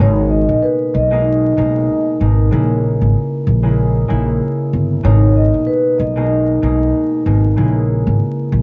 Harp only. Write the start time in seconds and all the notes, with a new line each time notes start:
Already playing: B2
0.00 G#3 A#3 D#4
1.10 B2 G#3 A#3 D#4
1.56 B2 G#3 A#3 D#4
2.20 B2 G#3 A#3 D#4
2.51 C#3 G#3 A#3 E4
3.63 C#3 G#3 A#3 E4
4.08 C#3 G#3 A#3 E4
5.03 B2 G#3 A#3 D#4
6.16 B2 G#3 A#3 D#4
6.62 B2 G#3 A#3 D#4
7.25 B2 G#3 A#3 D#4
7.56 C#3 G#3 A#3 E4